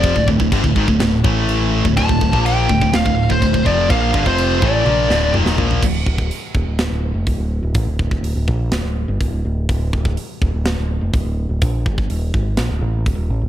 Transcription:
<<
  \new Staff \with { instrumentName = "Lead electric guitar" } { \time 4/4 \key d \minor \tempo 4 = 124 d''8 r2. r8 | a''4 g''4 f''8. c''8. d''8 | f''8. c''8. d''4. r4 | r1 |
r1 | r1 | r1 | }
  \new Staff \with { instrumentName = "Distorted electric guitar" } { \clef bass \time 4/4 \key d \minor <f, c f>16 <d, a,>16 <d, a,>16 <d, a,>16 <g, d>16 <d, a,>16 <gis, ees>16 <d, a,>16 <d, a,>8 <a, e a>4~ <a, e a>16 <d, a,>16 | <d, a,>16 <d, a,>16 <d, a,>16 <bes, f bes>8. <d, a,>16 <d, a,>16 <d, a,>16 <d, a,>8 <d, a,>16 <d, a,>16 <d, a,>16 <f, c f>8 | <bes, f bes>8 <g, d>16 <f, c f>8. <a, e a>8 <bes, f bes>8 <d, a, d>8 <ees, bes, ees>8 <bes, f bes>8 | r1 |
r1 | r1 | r1 | }
  \new Staff \with { instrumentName = "Distorted electric guitar" } { \clef bass \time 4/4 \key d \minor <f, c f>16 <d, a,>16 <d, a,>16 <d, a,>16 <g, d>16 <d, a,>16 <gis, ees>16 <d, a,>16 <d, a,>8 <a, e a>4~ <a, e a>16 <d, a,>16 | <d, a,>16 <d, a,>16 <d, a,>16 <bes, f bes>8. <d, a,>16 <d, a,>16 <d, a,>16 <d, a,>8 <d, a,>16 <d, a,>16 <d, a,>16 <f, c f>8 | <bes, f bes>8 <g, d>16 <f, c f>8. <a, e a>8 <bes, f bes>8 <d, a, d>8 <ees, bes, ees>8 <bes, f bes>8 | r1 |
r1 | r1 | r1 | }
  \new Staff \with { instrumentName = "Picked electric bass" } { \clef bass \time 4/4 \key d \minor f,,16 d,,16 d,,16 d,,16 g,,16 d,,16 gis,,16 d,,16 d,,8 a,,4~ a,,16 d,,16 | d,,16 d,,16 d,,16 bes,,8. d,,16 d,,16 d,,16 d,,8 d,,16 d,,16 d,,16 f,,8 | bes,,8 g,,16 f,,8. a,,8 bes,,8 d,,8 ees,,8 bes,,8 | d,,8 d,,8 r8 ees,,16 d,,8 d,,8 f,,16 d,,16 d,,8 d,,16 |
a,,16 d,,16 d,,16 d,,16 d,,16 d,,16 bes,,8 d,,16 d,,8 g,,16 d,,16 d,,16 d,,8 | d,,8 d,,8 r8 ees,,16 d,,8 d,,8 f,,16 d,,16 d,,8 d,,16 | bes,,8 g,,8 ees,,8 gis,,8 bes,,16 d,,16 a,,8 d,,16 ees,,16 a,,16 d,,16 | }
  \new DrumStaff \with { instrumentName = "Drums" } \drummode { \time 4/4 <cymc bd>16 bd16 bd16 bd16 <cymc bd>16 bd16 bd16 bd16 <cymc sn>8 bd8 cymc8. bd16 | <cymc bd>16 bd16 bd16 bd16 cymc8 bd16 bd16 <cymc sn>16 bd8 bd16 <cymc bd>16 bd16 bd8 | <cymc bd>8 bd16 bd16 cymc8 bd8 tommh8 sn8 toml16 sn16 tomfh16 tomfh16 | <cymc bd>8 bd16 bd16 hho8 bd8 <hho sn>4 <hho bd>4 |
<hho bd>8 bd16 bd16 hho8 bd8 <hho sn>4 <hho bd>4 | <hho bd>8 bd16 bd16 hho8 bd8 <hho sn>4 <hho bd>4 | <hho bd>8 bd16 bd16 hho8 bd8 <hho sn>4 <hho bd>4 | }
>>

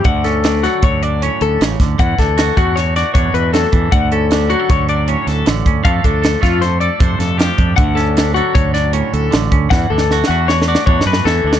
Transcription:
<<
  \new Staff \with { instrumentName = "Clean electric guitar" } { \time 5/4 \key d \major \tempo 4 = 155 fis''8 a'4 fis'8 cis''8 d''8 cis''8 a'8 r4 | fis''8 a'4 fis'8 cis''8 d''8 cis''8 b'8 a'4 | fis''8 a'4 fis'8 cis''8 d''8 cis''8 a'8 r4 | f''8 a'4 f'8 c''8 d''8 c''8 a'8 g'4 |
fis''8 a'4 fis'8 cis''8 d''8 cis''8 a'8 r4 | fis''8 a'4 fis'8 cis''8 d''8 cis''8 b'8 a'4 | }
  \new Staff \with { instrumentName = "Clean electric guitar" } { \time 5/4 \key d \major << { r8 cis'8 d'8 a'4 d'8 cis'2 | r8 d'8 fis'8 fis'4 fis'8 d'2 | r8 cis'8 d'8 fis'16 a'8. d'8 cis'4. cis'8 | <a d' a'>8 d'8 a'8 a'4 a'8 d'4. d'8 |
r8 cis'8 d'8 a'4 d'8 cis'4. cis'8 | r8 d'8 fis'8 fis'4 fis'8 d'4. d'8 | } \\ { <d a>4. fis4. a,4 cis8 d8 | e4. a4. b,4 fis8 e8 | d4. fis4. a,4 d4 | f4. a4. c4 f4 |
d4. fis4. a,4 d4 | e4. a4. b,4 e4 | } >> }
  \new Staff \with { instrumentName = "Fingered electric bass" } { \clef bass \time 5/4 \key d \major d,2 d,4. d,8 a,,8 d,8 | e,8 d,4 e,4. e,8 e,4 e,8 | d,2 d,4. d,8 a,,8 d,8 | f,8 d,4 f,4. f,8 f,4 f,8 |
d,2 d,4. d,8 a,,8 d,8 | e,8 d,4 e,4. e,8 fis,8 e,8 d,8 | }
  \new DrumStaff \with { instrumentName = "Drums" } \drummode { \time 5/4 <hh bd>8 <hh sn>8 <hh sn>8 <hh sn>8 <hh bd>8 hh8 hh8 hh8 <hh sn>8 <hh bd sn>8 | <hh bd>8 <hh bd sn>8 <hh sn>8 <hh bd>8 <hh sn>8 <hh sn>8 <hh bd>8 hh8 <hh sn>8 <hh bd>8 | <hh bd>8 hh8 <hh sn>8 hh8 <hh bd>8 hh8 hh8 <hh sn>8 <hh sn>8 <hh bd>8 | <hh bd>8 <hh bd>8 <hh sn>8 <hh bd sn>8 <hh sn>8 hh8 <hh bd>8 <hh sn>8 <hh sn>8 <hh bd>8 |
<hh bd>8 <hh sn>8 <hh sn>8 hh8 <hh bd>8 <hh sn>8 hh8 hh8 <hh sn>8 <hh bd>8 | \tuplet 3/2 { <bd sn>8 r8 sn8 sn8 sn8 r8 sn8 sn8 sn8 bd8 sn8 sn8 sn8 r8 sn8 } | }
>>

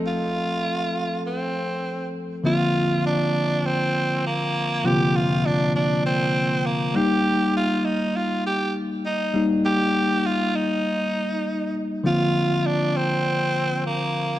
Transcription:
<<
  \new Staff \with { instrumentName = "Tenor saxophone" } { \time 4/4 \key bes \major \tempo 4 = 100 f'2 c'4. r8 | f'4 d'4 c'4 bes4 | g'8 f'8 d'8 d'8 c'4 bes8 g'8~ | g'8 f'8 ees'8 f'8 g'8 r8 ees'8. r16 |
g'4 f'8 ees'2 r8 | f'4 d'8 c'4. bes4 | }
  \new Staff \with { instrumentName = "Tine electric piano" } { \time 4/4 \key bes \major <f a c' a'>2.~ <f a c' a'>8 r8 | <d f bes c' f'>1 | <c d f bes c' f'>2.~ <c d f bes c' f'>8 <g bes ees'>8~ | <g bes ees'>2.~ <g bes ees'>8 <g bes ees'>8~ |
<g bes ees'>2.~ <g bes ees'>8 r8 | <d f bes c' f'>1 | }
>>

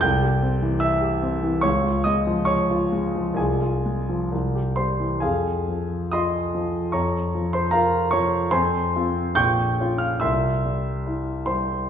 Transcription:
<<
  \new Staff \with { instrumentName = "Grand piano" } { \time 2/4 \key f \minor \tempo 4 = 71 <g'' g'''>4 <e'' e'''>8 r8 | <des'' des'''>8 <ees'' ees'''>8 <des'' des'''>4 | <aes' aes''>4 r8 <c'' c'''>8 | <aes' f'' aes''>4 <ees'' c''' ees'''>4 |
<des'' bes'' des'''>8. <c'' c'''>16 <bes' f'' bes''>8 <des'' des'''>8 | <c'' aes'' c'''>4 <g'' des''' g'''>8. <f'' f'''>16 | <e'' c''' e'''>4 r8 <c'' c'''>8 | }
  \new Staff \with { instrumentName = "Grand piano" } { \clef bass \time 2/4 \key f \minor c,16 g'16 c'16 e8 g'16 c'16 e16 | des,16 f'16 aes16 f8 f'16 aes16 f16 | c,16 f'16 aes16 f16 c,16 g'16 g16 e16 | f,8 f8 f'8 f8 |
f,8 f8 f'8 f8 | f,8 <c' f'>8 bes,,8 <des' f'>8 | c,8 g8 e'8 g8 | }
>>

